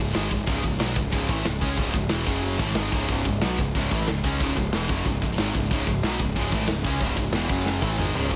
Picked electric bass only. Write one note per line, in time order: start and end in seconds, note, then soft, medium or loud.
0.00 0.13 C#1 medium
0.16 0.30 G#1 loud
0.31 0.46 C#1 medium
0.47 0.62 C#1 loud
0.64 0.79 C#1 medium
0.80 0.95 B1 medium
0.96 1.11 C#1 medium
1.12 1.28 C#1 medium
1.29 1.44 A1 loud
1.45 1.60 C#1 medium
1.62 1.76 C#2 loud
1.77 1.93 C#1 loud
1.93 2.09 C#1 medium
2.10 2.26 E1 medium
2.27 2.57 F#1 medium
2.59 2.74 A1 loud
2.75 2.91 G#1 medium
2.92 3.07 C#1 medium
3.09 3.24 C#1 medium
3.25 3.40 C#1 medium
3.42 3.57 B1 medium
3.58 3.73 C#1 medium
3.74 3.90 C#1 medium
3.92 4.06 A1 loud
4.08 4.23 C#1 medium
4.24 4.39 C#2 loud
4.40 4.55 C#1 medium
4.57 4.72 C#1 medium
4.74 4.88 E1 medium
4.90 5.04 F#1 loud
5.05 5.20 C#1 medium
5.22 5.37 C#1 medium
5.38 5.53 G#1 loud
5.55 5.70 C#1 medium
5.71 5.86 C#1 loud
5.87 6.02 C#1 medium
6.03 6.18 B1 medium
6.20 6.35 C#1 medium
6.36 6.51 C#1 medium
6.52 6.67 A1 loud
6.67 6.83 C#1 medium
6.85 7.00 C#2 medium
7.00 7.16 C#1 medium
7.17 7.31 C#1 medium
7.32 7.48 E1 medium
7.50 7.80 F#1 medium
7.82 7.97 A1 loud
7.98 8.13 G#1 medium
8.15 8.30 C#1 medium
8.31 8.36 C#1 medium